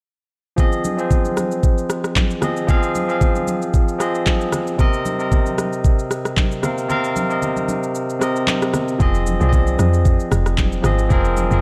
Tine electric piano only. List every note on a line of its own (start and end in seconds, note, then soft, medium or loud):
0.56 0.89 F3 loud
0.56 0.90 C4 medium
0.56 0.90 G#4 medium
0.56 0.91 D#5 loud
0.97 1.82 F3 medium
0.97 1.82 C4 medium
0.97 1.83 G#4 medium
0.97 1.83 C5 medium
2.41 2.63 F3 medium
2.41 2.64 C4 medium
2.41 2.64 G#4 medium
2.41 2.65 D#5 medium
2.67 3.00 F3 loud
2.67 3.00 C4 loud
2.67 3.01 G#4 loud
2.67 3.02 F5 loud
3.08 3.82 F3 medium
3.08 3.82 C4 medium
3.08 3.83 G#4 medium
3.08 3.83 F5 medium
3.98 4.63 F3 medium
3.98 4.64 C4 medium
3.98 4.65 G#4 medium
3.98 4.65 D#5 loud
4.77 5.10 C3 loud
4.77 5.11 C4 loud
4.77 5.12 A#4 loud
4.77 5.12 D#5 loud
5.18 6.03 C3 medium
5.18 6.03 C4 medium
5.18 6.04 A#4 medium
5.18 6.05 D#5 medium
6.62 6.84 C3 medium
6.62 6.85 C4 medium
6.62 6.85 A#4 medium
6.62 6.86 F5 medium
6.88 7.21 C3 loud
6.88 7.22 C4 loud
6.88 7.22 A#4 loud
6.88 7.23 F5 loud
7.29 8.03 C3 medium
7.29 8.03 C4 medium
7.29 8.04 A#4 medium
7.29 8.05 D#5 medium
8.20 8.85 C3 medium
8.20 8.85 C4 medium
8.20 8.86 A#4 medium
8.20 8.86 D#5 loud
8.98 9.31 F3 loud
8.98 9.32 C4 medium
8.98 9.33 G#4 loud
8.98 9.33 D#5 loud
9.39 10.24 F3 medium
9.39 10.24 C4 medium
9.39 10.25 G#4 medium
9.39 9.48 D5 medium
9.49 10.29 D#5 medium
10.82 11.05 F3 medium
10.82 11.06 C4 medium
10.82 11.06 G#4 medium
10.82 11.07 D#5 medium
11.09 11.42 F3 loud
11.09 11.42 C4 loud
11.09 11.43 G#4 loud
11.09 11.44 A#4 loud
11.50 11.61 F3 medium
11.50 11.61 C4 medium
11.50 11.61 G#4 medium
11.50 11.61 A#4 medium